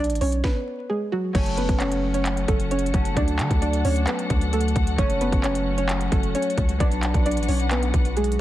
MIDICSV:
0, 0, Header, 1, 6, 480
1, 0, Start_track
1, 0, Key_signature, 3, "minor"
1, 0, Tempo, 454545
1, 1423, Time_signature, 4, 2, 24, 8
1, 8879, End_track
2, 0, Start_track
2, 0, Title_t, "String section"
2, 0, Program_c, 0, 48
2, 1424, Note_on_c, 0, 66, 76
2, 1425, Note_on_c, 0, 61, 83
2, 1425, Note_on_c, 0, 69, 79
2, 1425, Note_on_c, 0, 78, 94
2, 3325, Note_off_c, 0, 61, 0
2, 3343, Note_on_c, 0, 62, 85
2, 5244, Note_off_c, 0, 62, 0
2, 5262, Note_on_c, 0, 61, 85
2, 7142, Note_off_c, 0, 69, 0
2, 7142, Note_off_c, 0, 78, 0
2, 7163, Note_off_c, 0, 61, 0
2, 7182, Note_on_c, 0, 62, 85
2, 7182, Note_on_c, 0, 71, 78
2, 7182, Note_on_c, 0, 78, 94
2, 8879, Note_off_c, 0, 62, 0
2, 8879, Note_off_c, 0, 66, 0
2, 8879, Note_off_c, 0, 71, 0
2, 8879, Note_off_c, 0, 78, 0
2, 8879, End_track
3, 0, Start_track
3, 0, Title_t, "Synth pluck"
3, 0, Program_c, 1, 84
3, 0, Note_on_c, 1, 62, 65
3, 0, Note_on_c, 1, 74, 80
3, 182, Note_off_c, 1, 74, 0
3, 187, Note_off_c, 1, 62, 0
3, 223, Note_on_c, 1, 73, 87
3, 231, Note_on_c, 1, 61, 69
3, 422, Note_off_c, 1, 73, 0
3, 426, Note_off_c, 1, 61, 0
3, 464, Note_on_c, 1, 71, 84
3, 473, Note_on_c, 1, 59, 66
3, 915, Note_off_c, 1, 71, 0
3, 919, Note_off_c, 1, 59, 0
3, 945, Note_on_c, 1, 68, 75
3, 953, Note_on_c, 1, 56, 62
3, 1143, Note_off_c, 1, 68, 0
3, 1148, Note_off_c, 1, 56, 0
3, 1183, Note_on_c, 1, 66, 90
3, 1192, Note_on_c, 1, 54, 70
3, 1382, Note_off_c, 1, 66, 0
3, 1387, Note_off_c, 1, 54, 0
3, 1424, Note_on_c, 1, 73, 98
3, 1433, Note_on_c, 1, 61, 80
3, 1623, Note_off_c, 1, 73, 0
3, 1628, Note_off_c, 1, 61, 0
3, 1663, Note_on_c, 1, 71, 82
3, 1671, Note_on_c, 1, 59, 59
3, 1862, Note_off_c, 1, 71, 0
3, 1867, Note_off_c, 1, 59, 0
3, 1903, Note_on_c, 1, 73, 92
3, 1911, Note_on_c, 1, 61, 62
3, 2241, Note_off_c, 1, 73, 0
3, 2246, Note_off_c, 1, 61, 0
3, 2263, Note_on_c, 1, 73, 73
3, 2272, Note_on_c, 1, 61, 56
3, 2602, Note_off_c, 1, 73, 0
3, 2606, Note_off_c, 1, 61, 0
3, 2623, Note_on_c, 1, 69, 83
3, 2632, Note_on_c, 1, 57, 61
3, 2822, Note_off_c, 1, 69, 0
3, 2827, Note_off_c, 1, 57, 0
3, 2863, Note_on_c, 1, 73, 80
3, 2872, Note_on_c, 1, 61, 67
3, 3062, Note_off_c, 1, 73, 0
3, 3067, Note_off_c, 1, 61, 0
3, 3344, Note_on_c, 1, 74, 105
3, 3352, Note_on_c, 1, 62, 82
3, 3795, Note_off_c, 1, 74, 0
3, 3799, Note_off_c, 1, 62, 0
3, 3821, Note_on_c, 1, 74, 86
3, 3830, Note_on_c, 1, 62, 73
3, 4021, Note_off_c, 1, 74, 0
3, 4026, Note_off_c, 1, 62, 0
3, 4063, Note_on_c, 1, 73, 81
3, 4071, Note_on_c, 1, 61, 58
3, 4262, Note_off_c, 1, 73, 0
3, 4267, Note_off_c, 1, 61, 0
3, 4303, Note_on_c, 1, 71, 82
3, 4312, Note_on_c, 1, 59, 65
3, 4754, Note_off_c, 1, 71, 0
3, 4759, Note_off_c, 1, 59, 0
3, 4784, Note_on_c, 1, 69, 83
3, 4793, Note_on_c, 1, 57, 66
3, 5235, Note_off_c, 1, 69, 0
3, 5239, Note_off_c, 1, 57, 0
3, 5262, Note_on_c, 1, 73, 107
3, 5271, Note_on_c, 1, 61, 84
3, 5461, Note_off_c, 1, 73, 0
3, 5466, Note_off_c, 1, 61, 0
3, 5502, Note_on_c, 1, 71, 89
3, 5511, Note_on_c, 1, 59, 63
3, 5701, Note_off_c, 1, 71, 0
3, 5707, Note_off_c, 1, 59, 0
3, 5742, Note_on_c, 1, 73, 94
3, 5751, Note_on_c, 1, 61, 74
3, 6081, Note_off_c, 1, 73, 0
3, 6086, Note_off_c, 1, 61, 0
3, 6103, Note_on_c, 1, 73, 77
3, 6111, Note_on_c, 1, 61, 61
3, 6442, Note_off_c, 1, 73, 0
3, 6446, Note_off_c, 1, 61, 0
3, 6464, Note_on_c, 1, 69, 85
3, 6473, Note_on_c, 1, 57, 61
3, 6662, Note_off_c, 1, 69, 0
3, 6667, Note_off_c, 1, 57, 0
3, 6704, Note_on_c, 1, 73, 78
3, 6713, Note_on_c, 1, 61, 66
3, 6902, Note_off_c, 1, 73, 0
3, 6907, Note_off_c, 1, 61, 0
3, 7184, Note_on_c, 1, 74, 99
3, 7192, Note_on_c, 1, 62, 80
3, 7635, Note_off_c, 1, 74, 0
3, 7639, Note_off_c, 1, 62, 0
3, 7664, Note_on_c, 1, 74, 79
3, 7673, Note_on_c, 1, 62, 67
3, 7862, Note_off_c, 1, 74, 0
3, 7868, Note_off_c, 1, 62, 0
3, 7904, Note_on_c, 1, 73, 85
3, 7912, Note_on_c, 1, 61, 72
3, 8102, Note_off_c, 1, 73, 0
3, 8107, Note_off_c, 1, 61, 0
3, 8144, Note_on_c, 1, 71, 88
3, 8152, Note_on_c, 1, 59, 65
3, 8595, Note_off_c, 1, 71, 0
3, 8599, Note_off_c, 1, 59, 0
3, 8625, Note_on_c, 1, 68, 75
3, 8633, Note_on_c, 1, 56, 62
3, 8823, Note_off_c, 1, 68, 0
3, 8827, Note_off_c, 1, 56, 0
3, 8879, End_track
4, 0, Start_track
4, 0, Title_t, "Harp"
4, 0, Program_c, 2, 46
4, 1404, Note_on_c, 2, 54, 70
4, 1427, Note_on_c, 2, 57, 67
4, 1449, Note_on_c, 2, 61, 80
4, 3079, Note_off_c, 2, 54, 0
4, 3091, Note_on_c, 2, 54, 50
4, 3098, Note_off_c, 2, 57, 0
4, 3102, Note_on_c, 2, 57, 47
4, 3109, Note_off_c, 2, 61, 0
4, 3114, Note_on_c, 2, 61, 61
4, 3304, Note_off_c, 2, 54, 0
4, 3316, Note_on_c, 2, 54, 70
4, 3326, Note_off_c, 2, 57, 0
4, 3338, Note_on_c, 2, 57, 68
4, 3348, Note_off_c, 2, 61, 0
4, 3360, Note_on_c, 2, 62, 76
4, 5226, Note_off_c, 2, 54, 0
4, 5239, Note_on_c, 2, 54, 74
4, 5256, Note_off_c, 2, 57, 0
4, 5261, Note_on_c, 2, 57, 62
4, 5283, Note_on_c, 2, 61, 77
4, 5346, Note_off_c, 2, 62, 0
4, 7150, Note_off_c, 2, 54, 0
4, 7163, Note_on_c, 2, 54, 70
4, 7185, Note_on_c, 2, 59, 63
4, 7208, Note_on_c, 2, 62, 79
4, 7271, Note_off_c, 2, 61, 0
4, 8776, Note_off_c, 2, 57, 0
4, 8879, Note_off_c, 2, 54, 0
4, 8879, Note_off_c, 2, 59, 0
4, 8879, Note_off_c, 2, 62, 0
4, 8879, End_track
5, 0, Start_track
5, 0, Title_t, "808-style bass"
5, 0, Program_c, 3, 38
5, 0, Note_on_c, 3, 35, 104
5, 103, Note_on_c, 3, 33, 96
5, 119, Note_off_c, 3, 35, 0
5, 217, Note_off_c, 3, 33, 0
5, 223, Note_on_c, 3, 35, 112
5, 454, Note_off_c, 3, 35, 0
5, 1423, Note_on_c, 3, 30, 110
5, 1769, Note_off_c, 3, 30, 0
5, 1783, Note_on_c, 3, 30, 104
5, 2590, Note_off_c, 3, 30, 0
5, 2622, Note_on_c, 3, 30, 105
5, 3084, Note_off_c, 3, 30, 0
5, 3103, Note_on_c, 3, 30, 104
5, 3334, Note_off_c, 3, 30, 0
5, 3343, Note_on_c, 3, 38, 110
5, 3584, Note_on_c, 3, 50, 96
5, 3600, Note_off_c, 3, 38, 0
5, 3698, Note_off_c, 3, 50, 0
5, 3703, Note_on_c, 3, 38, 104
5, 4049, Note_off_c, 3, 38, 0
5, 4063, Note_on_c, 3, 38, 112
5, 4294, Note_off_c, 3, 38, 0
5, 4542, Note_on_c, 3, 38, 106
5, 5004, Note_off_c, 3, 38, 0
5, 5024, Note_on_c, 3, 38, 108
5, 5254, Note_off_c, 3, 38, 0
5, 5263, Note_on_c, 3, 30, 111
5, 5609, Note_off_c, 3, 30, 0
5, 5623, Note_on_c, 3, 30, 107
5, 6429, Note_off_c, 3, 30, 0
5, 6462, Note_on_c, 3, 30, 107
5, 6693, Note_off_c, 3, 30, 0
5, 6944, Note_on_c, 3, 37, 104
5, 7174, Note_off_c, 3, 37, 0
5, 7183, Note_on_c, 3, 35, 113
5, 7529, Note_off_c, 3, 35, 0
5, 7544, Note_on_c, 3, 35, 109
5, 7783, Note_on_c, 3, 33, 99
5, 7799, Note_off_c, 3, 35, 0
5, 7897, Note_off_c, 3, 33, 0
5, 7902, Note_on_c, 3, 35, 108
5, 8364, Note_off_c, 3, 35, 0
5, 8383, Note_on_c, 3, 35, 104
5, 8844, Note_off_c, 3, 35, 0
5, 8879, End_track
6, 0, Start_track
6, 0, Title_t, "Drums"
6, 43, Note_on_c, 9, 42, 60
6, 103, Note_off_c, 9, 42, 0
6, 103, Note_on_c, 9, 42, 59
6, 163, Note_off_c, 9, 42, 0
6, 163, Note_on_c, 9, 42, 58
6, 223, Note_on_c, 9, 46, 92
6, 268, Note_off_c, 9, 42, 0
6, 329, Note_off_c, 9, 46, 0
6, 342, Note_on_c, 9, 42, 51
6, 447, Note_off_c, 9, 42, 0
6, 463, Note_on_c, 9, 36, 105
6, 463, Note_on_c, 9, 38, 86
6, 568, Note_off_c, 9, 38, 0
6, 569, Note_off_c, 9, 36, 0
6, 1423, Note_on_c, 9, 36, 119
6, 1423, Note_on_c, 9, 42, 86
6, 1423, Note_on_c, 9, 49, 103
6, 1529, Note_off_c, 9, 36, 0
6, 1529, Note_off_c, 9, 42, 0
6, 1529, Note_off_c, 9, 49, 0
6, 1542, Note_on_c, 9, 42, 61
6, 1647, Note_off_c, 9, 42, 0
6, 1662, Note_on_c, 9, 42, 76
6, 1768, Note_off_c, 9, 42, 0
6, 1783, Note_on_c, 9, 36, 99
6, 1783, Note_on_c, 9, 42, 56
6, 1889, Note_off_c, 9, 36, 0
6, 1889, Note_off_c, 9, 42, 0
6, 1903, Note_on_c, 9, 39, 103
6, 1903, Note_on_c, 9, 42, 71
6, 2009, Note_off_c, 9, 39, 0
6, 2009, Note_off_c, 9, 42, 0
6, 2024, Note_on_c, 9, 42, 85
6, 2129, Note_off_c, 9, 42, 0
6, 2262, Note_on_c, 9, 42, 53
6, 2368, Note_off_c, 9, 42, 0
6, 2382, Note_on_c, 9, 42, 80
6, 2383, Note_on_c, 9, 39, 113
6, 2487, Note_off_c, 9, 42, 0
6, 2488, Note_off_c, 9, 39, 0
6, 2504, Note_on_c, 9, 42, 52
6, 2610, Note_off_c, 9, 42, 0
6, 2622, Note_on_c, 9, 36, 103
6, 2622, Note_on_c, 9, 42, 75
6, 2727, Note_off_c, 9, 42, 0
6, 2728, Note_off_c, 9, 36, 0
6, 2741, Note_on_c, 9, 42, 53
6, 2847, Note_off_c, 9, 42, 0
6, 2862, Note_on_c, 9, 42, 77
6, 2943, Note_off_c, 9, 42, 0
6, 2943, Note_on_c, 9, 42, 60
6, 3022, Note_off_c, 9, 42, 0
6, 3022, Note_on_c, 9, 42, 46
6, 3102, Note_off_c, 9, 42, 0
6, 3102, Note_on_c, 9, 42, 65
6, 3103, Note_on_c, 9, 36, 101
6, 3208, Note_off_c, 9, 42, 0
6, 3209, Note_off_c, 9, 36, 0
6, 3222, Note_on_c, 9, 42, 70
6, 3328, Note_off_c, 9, 42, 0
6, 3343, Note_on_c, 9, 36, 121
6, 3343, Note_on_c, 9, 42, 83
6, 3448, Note_off_c, 9, 36, 0
6, 3448, Note_off_c, 9, 42, 0
6, 3461, Note_on_c, 9, 42, 61
6, 3567, Note_off_c, 9, 42, 0
6, 3581, Note_on_c, 9, 42, 77
6, 3583, Note_on_c, 9, 39, 104
6, 3687, Note_off_c, 9, 42, 0
6, 3688, Note_off_c, 9, 39, 0
6, 3703, Note_on_c, 9, 36, 97
6, 3703, Note_on_c, 9, 42, 55
6, 3808, Note_off_c, 9, 36, 0
6, 3808, Note_off_c, 9, 42, 0
6, 3823, Note_on_c, 9, 42, 73
6, 3928, Note_off_c, 9, 42, 0
6, 3943, Note_on_c, 9, 42, 83
6, 4049, Note_off_c, 9, 42, 0
6, 4063, Note_on_c, 9, 46, 94
6, 4169, Note_off_c, 9, 46, 0
6, 4181, Note_on_c, 9, 42, 52
6, 4287, Note_off_c, 9, 42, 0
6, 4301, Note_on_c, 9, 42, 81
6, 4302, Note_on_c, 9, 39, 114
6, 4406, Note_off_c, 9, 42, 0
6, 4407, Note_off_c, 9, 39, 0
6, 4423, Note_on_c, 9, 42, 55
6, 4529, Note_off_c, 9, 42, 0
6, 4541, Note_on_c, 9, 42, 76
6, 4542, Note_on_c, 9, 36, 106
6, 4647, Note_off_c, 9, 42, 0
6, 4648, Note_off_c, 9, 36, 0
6, 4661, Note_on_c, 9, 42, 52
6, 4766, Note_off_c, 9, 42, 0
6, 4783, Note_on_c, 9, 42, 79
6, 4863, Note_off_c, 9, 42, 0
6, 4863, Note_on_c, 9, 42, 60
6, 4943, Note_off_c, 9, 42, 0
6, 4943, Note_on_c, 9, 42, 45
6, 5023, Note_off_c, 9, 42, 0
6, 5023, Note_on_c, 9, 36, 99
6, 5023, Note_on_c, 9, 42, 67
6, 5128, Note_off_c, 9, 42, 0
6, 5129, Note_off_c, 9, 36, 0
6, 5143, Note_on_c, 9, 42, 67
6, 5249, Note_off_c, 9, 42, 0
6, 5263, Note_on_c, 9, 36, 115
6, 5263, Note_on_c, 9, 42, 84
6, 5368, Note_off_c, 9, 36, 0
6, 5368, Note_off_c, 9, 42, 0
6, 5382, Note_on_c, 9, 42, 64
6, 5488, Note_off_c, 9, 42, 0
6, 5502, Note_on_c, 9, 42, 78
6, 5607, Note_off_c, 9, 42, 0
6, 5623, Note_on_c, 9, 36, 102
6, 5624, Note_on_c, 9, 42, 55
6, 5728, Note_off_c, 9, 36, 0
6, 5729, Note_off_c, 9, 42, 0
6, 5743, Note_on_c, 9, 39, 99
6, 5743, Note_on_c, 9, 42, 72
6, 5849, Note_off_c, 9, 39, 0
6, 5849, Note_off_c, 9, 42, 0
6, 5863, Note_on_c, 9, 42, 84
6, 5969, Note_off_c, 9, 42, 0
6, 6102, Note_on_c, 9, 42, 54
6, 6207, Note_off_c, 9, 42, 0
6, 6222, Note_on_c, 9, 39, 111
6, 6222, Note_on_c, 9, 42, 82
6, 6327, Note_off_c, 9, 42, 0
6, 6328, Note_off_c, 9, 39, 0
6, 6343, Note_on_c, 9, 42, 52
6, 6449, Note_off_c, 9, 42, 0
6, 6462, Note_on_c, 9, 36, 104
6, 6462, Note_on_c, 9, 42, 73
6, 6567, Note_off_c, 9, 42, 0
6, 6568, Note_off_c, 9, 36, 0
6, 6581, Note_on_c, 9, 42, 53
6, 6687, Note_off_c, 9, 42, 0
6, 6703, Note_on_c, 9, 42, 77
6, 6783, Note_off_c, 9, 42, 0
6, 6783, Note_on_c, 9, 42, 60
6, 6863, Note_off_c, 9, 42, 0
6, 6863, Note_on_c, 9, 42, 46
6, 6943, Note_off_c, 9, 42, 0
6, 6943, Note_on_c, 9, 42, 64
6, 6944, Note_on_c, 9, 36, 97
6, 7049, Note_off_c, 9, 36, 0
6, 7049, Note_off_c, 9, 42, 0
6, 7063, Note_on_c, 9, 42, 70
6, 7168, Note_off_c, 9, 42, 0
6, 7183, Note_on_c, 9, 36, 114
6, 7183, Note_on_c, 9, 42, 81
6, 7289, Note_off_c, 9, 36, 0
6, 7289, Note_off_c, 9, 42, 0
6, 7302, Note_on_c, 9, 42, 62
6, 7408, Note_off_c, 9, 42, 0
6, 7422, Note_on_c, 9, 42, 75
6, 7424, Note_on_c, 9, 39, 100
6, 7528, Note_off_c, 9, 42, 0
6, 7529, Note_off_c, 9, 39, 0
6, 7543, Note_on_c, 9, 36, 99
6, 7544, Note_on_c, 9, 42, 57
6, 7649, Note_off_c, 9, 36, 0
6, 7649, Note_off_c, 9, 42, 0
6, 7664, Note_on_c, 9, 42, 61
6, 7724, Note_off_c, 9, 42, 0
6, 7724, Note_on_c, 9, 42, 64
6, 7783, Note_off_c, 9, 42, 0
6, 7783, Note_on_c, 9, 42, 61
6, 7843, Note_off_c, 9, 42, 0
6, 7843, Note_on_c, 9, 42, 61
6, 7904, Note_on_c, 9, 46, 93
6, 7949, Note_off_c, 9, 42, 0
6, 8010, Note_off_c, 9, 46, 0
6, 8023, Note_on_c, 9, 42, 54
6, 8128, Note_off_c, 9, 42, 0
6, 8142, Note_on_c, 9, 42, 79
6, 8143, Note_on_c, 9, 39, 110
6, 8247, Note_off_c, 9, 42, 0
6, 8248, Note_off_c, 9, 39, 0
6, 8264, Note_on_c, 9, 42, 55
6, 8370, Note_off_c, 9, 42, 0
6, 8382, Note_on_c, 9, 42, 73
6, 8383, Note_on_c, 9, 36, 101
6, 8488, Note_off_c, 9, 36, 0
6, 8488, Note_off_c, 9, 42, 0
6, 8501, Note_on_c, 9, 42, 52
6, 8607, Note_off_c, 9, 42, 0
6, 8623, Note_on_c, 9, 42, 47
6, 8703, Note_off_c, 9, 42, 0
6, 8703, Note_on_c, 9, 42, 62
6, 8783, Note_off_c, 9, 42, 0
6, 8783, Note_on_c, 9, 42, 77
6, 8879, Note_off_c, 9, 42, 0
6, 8879, End_track
0, 0, End_of_file